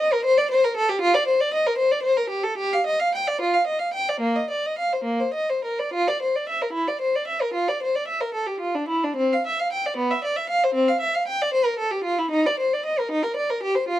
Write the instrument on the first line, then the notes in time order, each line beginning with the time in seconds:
violin
0.00 D#5
0.13 A#4
0.25 C5
0.38 D5
0.51 C5
0.64 A#4
0.76 A4
0.89 G4
1.01 F4
1.14 D5
1.27 C5
1.41 D5
1.54 D#5
1.67 A#4
1.78 C5
1.91 D5
2.03 C5
2.17 A#4
2.30 G4
2.43 A4
2.58 G4
2.73 F5
2.86 D#5
3.00 F5
3.15 G5
3.27 D5
3.41 F4
3.54 F5
3.67 D#5
3.79 F5
3.94 G5
4.09 D5
4.20 A#3
4.36 D#5
4.50 D5
4.66 D#5
4.79 F5
4.93 C5
5.04 A#3
5.20 C5
5.34 D#5
5.49 C5
5.65 A#4
5.79 D5
5.94 F4
6.08 D5
6.22 C5
6.36 D5
6.49 E5
6.62 A#4
6.73 E4
6.88 D5
7.01 C5
7.15 D5
7.28 E5
7.41 A#4
7.54 F4
7.69 D5
7.83 C5
7.95 D5
8.08 E5
8.21 A#4
8.34 A4
8.47 G4
8.60 F4
8.75 D4
8.89 E4
9.04 D4
9.16 C4
9.33 F5
9.47 E5
9.59 F5
9.72 G5
9.86 D5
9.97 B3
10.11 E5
10.24 D5
10.36 E5
10.49 F5
10.64 C5
10.74 C4
10.88 F5
11.00 E5
11.15 F5
11.27 G5
11.42 D5
11.53 C5
11.65 A#4
11.79 A4
11.91 G4
12.04 F4
12.19 E4
12.31 D#4
12.46 D5
12.60 C5
12.73 D5
12.86 D#5
12.99 A#4
13.11 D#4
13.23 A#4
13.36 D5
13.50 A#4
13.63 G4
13.75 C5
13.88 F4